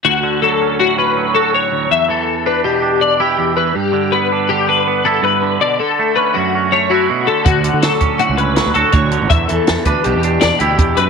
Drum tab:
HH |----------|----------|----------|----------|
SD |----------|----------|----------|----------|
BD |----------|----------|----------|----------|

HH |xxxxxxxxxx|xxxxxxxxxx|
SD |--o---o---|--o---o---|
BD |o--o----o-|o--o----o-|